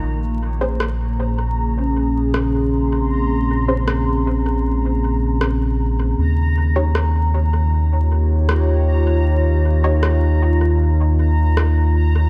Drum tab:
SD |--r---r-|--r---r-|--r---r-|--r---r-|